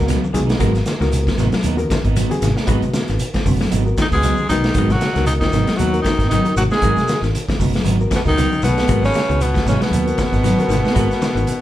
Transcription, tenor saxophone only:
0, 0, Header, 1, 2, 480
1, 0, Start_track
1, 0, Tempo, 518135
1, 558, Time_signature, 4, 2, 24, 8
1, 10757, End_track
2, 0, Start_track
2, 0, Title_t, "Tenor saxophone"
2, 0, Program_c, 0, 66
2, 3720, Note_on_c, 0, 63, 93
2, 3773, Note_off_c, 0, 63, 0
2, 3824, Note_on_c, 0, 68, 108
2, 4144, Note_off_c, 0, 68, 0
2, 4160, Note_on_c, 0, 63, 96
2, 4554, Note_on_c, 0, 66, 92
2, 4568, Note_off_c, 0, 63, 0
2, 4875, Note_off_c, 0, 66, 0
2, 4880, Note_on_c, 0, 63, 84
2, 4942, Note_off_c, 0, 63, 0
2, 5003, Note_on_c, 0, 63, 84
2, 5342, Note_on_c, 0, 66, 90
2, 5356, Note_off_c, 0, 63, 0
2, 5570, Note_off_c, 0, 66, 0
2, 5576, Note_on_c, 0, 63, 84
2, 5813, Note_off_c, 0, 63, 0
2, 5834, Note_on_c, 0, 63, 91
2, 6063, Note_off_c, 0, 63, 0
2, 6088, Note_on_c, 0, 66, 89
2, 6148, Note_off_c, 0, 66, 0
2, 6223, Note_on_c, 0, 68, 95
2, 6668, Note_off_c, 0, 68, 0
2, 7555, Note_on_c, 0, 59, 85
2, 7609, Note_off_c, 0, 59, 0
2, 7669, Note_on_c, 0, 63, 114
2, 7985, Note_off_c, 0, 63, 0
2, 8001, Note_on_c, 0, 59, 102
2, 8349, Note_off_c, 0, 59, 0
2, 8384, Note_on_c, 0, 61, 102
2, 8726, Note_on_c, 0, 59, 91
2, 8740, Note_off_c, 0, 61, 0
2, 8963, Note_off_c, 0, 59, 0
2, 8971, Note_on_c, 0, 61, 87
2, 9090, Note_off_c, 0, 61, 0
2, 9103, Note_on_c, 0, 59, 91
2, 10757, Note_off_c, 0, 59, 0
2, 10757, End_track
0, 0, End_of_file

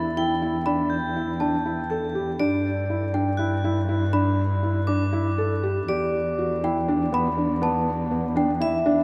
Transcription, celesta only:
0, 0, Header, 1, 2, 480
1, 0, Start_track
1, 0, Key_signature, 1, "minor"
1, 0, Tempo, 496278
1, 648, Time_signature, 7, 3, 24, 8
1, 8740, End_track
2, 0, Start_track
2, 0, Title_t, "Celesta"
2, 0, Program_c, 0, 8
2, 0, Note_on_c, 0, 83, 87
2, 608, Note_off_c, 0, 83, 0
2, 636, Note_on_c, 0, 83, 91
2, 1356, Note_on_c, 0, 81, 73
2, 1377, Note_off_c, 0, 83, 0
2, 2036, Note_off_c, 0, 81, 0
2, 3038, Note_on_c, 0, 79, 71
2, 3996, Note_on_c, 0, 83, 90
2, 4027, Note_off_c, 0, 79, 0
2, 5167, Note_off_c, 0, 83, 0
2, 6423, Note_on_c, 0, 79, 85
2, 6906, Note_on_c, 0, 83, 105
2, 6913, Note_off_c, 0, 79, 0
2, 7379, Note_on_c, 0, 81, 88
2, 7395, Note_off_c, 0, 83, 0
2, 8056, Note_off_c, 0, 81, 0
2, 8094, Note_on_c, 0, 79, 83
2, 8740, Note_off_c, 0, 79, 0
2, 8740, End_track
0, 0, End_of_file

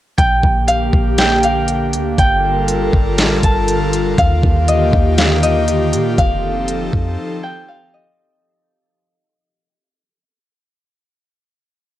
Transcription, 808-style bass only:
0, 0, Header, 1, 2, 480
1, 0, Start_track
1, 0, Key_signature, -2, "major"
1, 0, Tempo, 500000
1, 175, Time_signature, 4, 2, 24, 8
1, 11510, End_track
2, 0, Start_track
2, 0, Title_t, "808-style bass"
2, 0, Program_c, 0, 38
2, 175, Note_on_c, 0, 34, 110
2, 405, Note_off_c, 0, 34, 0
2, 416, Note_on_c, 0, 34, 103
2, 876, Note_off_c, 0, 34, 0
2, 894, Note_on_c, 0, 34, 102
2, 1855, Note_on_c, 0, 38, 95
2, 1869, Note_off_c, 0, 34, 0
2, 2083, Note_off_c, 0, 38, 0
2, 2095, Note_on_c, 0, 31, 113
2, 2786, Note_off_c, 0, 31, 0
2, 2815, Note_on_c, 0, 31, 100
2, 3055, Note_on_c, 0, 33, 100
2, 3070, Note_off_c, 0, 31, 0
2, 3283, Note_off_c, 0, 33, 0
2, 3296, Note_on_c, 0, 31, 103
2, 3986, Note_off_c, 0, 31, 0
2, 4015, Note_on_c, 0, 39, 111
2, 4246, Note_off_c, 0, 39, 0
2, 4257, Note_on_c, 0, 39, 106
2, 4716, Note_off_c, 0, 39, 0
2, 4735, Note_on_c, 0, 39, 104
2, 5696, Note_on_c, 0, 46, 99
2, 5710, Note_off_c, 0, 39, 0
2, 5923, Note_off_c, 0, 46, 0
2, 5935, Note_on_c, 0, 29, 116
2, 6626, Note_off_c, 0, 29, 0
2, 6655, Note_on_c, 0, 41, 98
2, 6885, Note_off_c, 0, 41, 0
2, 11510, End_track
0, 0, End_of_file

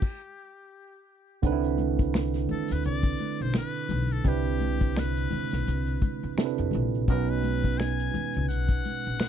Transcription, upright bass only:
0, 0, Header, 1, 3, 480
1, 0, Start_track
1, 0, Key_signature, 0, "major"
1, 0, Tempo, 705882
1, 975, Time_signature, 4, 2, 24, 8
1, 6314, End_track
2, 0, Start_track
2, 0, Title_t, "Upright bass"
2, 0, Program_c, 0, 32
2, 980, Note_on_c, 0, 36, 102
2, 1670, Note_off_c, 0, 36, 0
2, 1843, Note_on_c, 0, 38, 81
2, 1941, Note_on_c, 0, 36, 96
2, 1952, Note_off_c, 0, 38, 0
2, 2128, Note_off_c, 0, 36, 0
2, 2317, Note_on_c, 0, 35, 91
2, 2395, Note_off_c, 0, 35, 0
2, 2658, Note_on_c, 0, 35, 94
2, 2846, Note_off_c, 0, 35, 0
2, 2893, Note_on_c, 0, 36, 110
2, 3587, Note_off_c, 0, 36, 0
2, 3761, Note_on_c, 0, 35, 81
2, 3838, Note_off_c, 0, 35, 0
2, 3862, Note_on_c, 0, 36, 94
2, 4049, Note_off_c, 0, 36, 0
2, 4238, Note_on_c, 0, 40, 86
2, 4316, Note_off_c, 0, 40, 0
2, 4479, Note_on_c, 0, 41, 94
2, 4556, Note_off_c, 0, 41, 0
2, 4585, Note_on_c, 0, 34, 95
2, 4823, Note_off_c, 0, 34, 0
2, 4823, Note_on_c, 0, 35, 108
2, 5512, Note_off_c, 0, 35, 0
2, 5689, Note_on_c, 0, 37, 89
2, 5785, Note_off_c, 0, 37, 0
2, 5785, Note_on_c, 0, 35, 91
2, 5970, Note_off_c, 0, 35, 0
2, 6166, Note_on_c, 0, 34, 89
2, 6241, Note_off_c, 0, 34, 0
2, 6314, End_track
3, 0, Start_track
3, 0, Title_t, "Muted upright bass strokes"
3, 1704, Note_on_c, 9, 29, 46
3, 1772, Note_off_c, 9, 29, 0
3, 3621, Note_on_c, 9, 29, 50
3, 3689, Note_off_c, 9, 29, 0
3, 5542, Note_on_c, 9, 29, 51
3, 5610, Note_off_c, 9, 29, 0
3, 6314, End_track
0, 0, End_of_file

